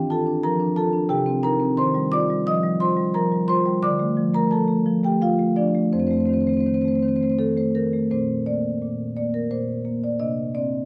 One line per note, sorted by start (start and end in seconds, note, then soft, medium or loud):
0.00 1.07 D#3 medium
0.00 0.20 D4 medium
0.10 0.37 F4 medium
0.10 0.42 A4 medium
0.10 0.42 A5 loud
0.26 0.53 D4 medium
0.43 0.70 F3 medium
0.43 0.75 A#4 medium
0.43 0.76 A#5 loud
0.60 0.87 D4 medium
0.76 1.03 F4 medium
0.76 1.08 A4 medium
0.76 1.09 A5 loud
0.93 1.10 D4 medium
1.09 1.76 C3 medium
1.09 1.42 G4 medium
1.09 1.42 G5 loud
1.26 1.54 C4 medium
1.43 1.71 D#4 medium
1.43 1.76 A#4 medium
1.43 1.77 A#5 loud
1.60 1.78 C4 medium
1.77 3.78 D#3 medium
1.77 2.11 C5 medium
1.77 2.11 C6 loud
1.95 2.23 G3 medium
2.12 2.40 F4 medium
2.12 2.45 D5 medium
2.12 2.45 D6 loud
2.30 2.57 G3 medium
2.47 2.74 F3 medium
2.47 2.79 D#5 medium
2.47 2.80 D#6 loud
2.63 2.91 G3 medium
2.80 3.08 F4 medium
2.80 3.13 C5 medium
2.80 3.13 C6 loud
2.97 3.25 G3 medium
3.14 3.42 F3 medium
3.14 3.47 A#4 medium
3.14 3.47 A#5 loud
3.32 3.59 G3 medium
3.48 3.76 F4 medium
3.48 3.81 C5 medium
3.48 3.81 C6 loud
3.65 3.83 G3 medium
3.83 5.90 D3 medium
3.83 4.31 D5 medium
3.83 4.32 D6 loud
3.99 4.27 A3 medium
4.17 4.44 F3 medium
4.34 4.61 A3 medium
4.34 4.51 A#4 medium
4.34 4.51 A#5 loud
4.51 4.79 F3 medium
4.51 5.01 A4 medium
4.51 5.01 A5 medium
4.68 4.96 A3 medium
4.86 5.14 F3 medium
5.04 5.32 A3 medium
5.04 5.21 G4 medium
5.04 5.22 G5 medium
5.21 5.50 F3 medium
5.21 5.55 F4 medium
5.21 5.56 F5 medium
5.39 5.68 A3 medium
5.56 5.86 F3 medium
5.56 5.91 D4 medium
5.56 5.92 D5 medium
5.75 5.93 A3 medium
5.93 8.08 F2 medium
5.93 6.00 C4 medium
5.93 6.00 C5 medium
6.00 6.08 C4 soft
6.00 6.07 C5 medium
6.07 6.17 C4 medium
6.07 6.13 C5 medium
6.11 6.41 A3 medium
6.11 6.20 C5 medium
6.17 6.26 C4 soft
6.17 6.27 C5 medium
6.26 6.59 D#3 medium
6.26 6.34 C4 medium
6.26 6.33 C5 medium
6.33 6.42 C4 soft
6.33 6.41 C5 medium
6.41 6.49 C4 medium
6.41 6.47 C5 medium
6.47 6.77 A3 medium
6.47 6.57 C4 soft
6.47 6.53 C5 medium
6.53 6.66 C4 medium
6.53 6.61 C5 medium
6.61 6.66 C5 medium
6.66 6.96 D#3 soft
6.66 6.74 C4 soft
6.66 6.74 C5 medium
6.74 6.82 C4 medium
6.74 6.81 C5 medium
6.81 7.14 A3 medium
6.81 6.91 C4 soft
6.81 6.88 C5 medium
6.88 7.00 C4 medium
6.88 6.95 C5 medium
6.95 7.02 C5 medium
7.00 7.32 D#3 medium
7.00 7.08 C4 soft
7.00 7.09 C5 medium
7.08 7.16 C4 medium
7.08 7.16 C5 medium
7.16 7.24 C4 soft
7.16 7.23 C5 medium
7.21 7.51 A3 soft
7.21 7.31 C4 soft
7.21 7.30 C5 medium
7.30 7.35 C4 soft
7.30 7.35 C5 medium
7.39 7.68 D#3 medium
7.39 7.57 A4 medium
7.57 7.87 A3 medium
7.57 7.76 C5 medium
7.75 8.05 D#3 medium
7.75 8.10 A#4 medium
7.93 8.10 A3 medium
8.11 8.81 A#2 medium
8.11 10.16 A3 soft
8.11 10.16 C4 soft
8.11 8.45 C5 medium
8.46 9.16 A#3 medium
8.46 9.13 D5 medium
8.82 9.50 A#2 medium
9.17 9.84 A#3 medium
9.17 9.34 D5 medium
9.34 9.51 A#4 medium
9.51 10.18 A#2 medium
9.51 10.01 C5 medium
9.85 10.19 A#3 medium
10.04 10.21 D5 medium
10.20 10.85 C3 medium
10.20 10.85 A#3 soft
10.20 10.85 D4 soft
10.20 10.53 D#5 medium
10.55 10.85 C4 medium
10.55 10.85 D5 medium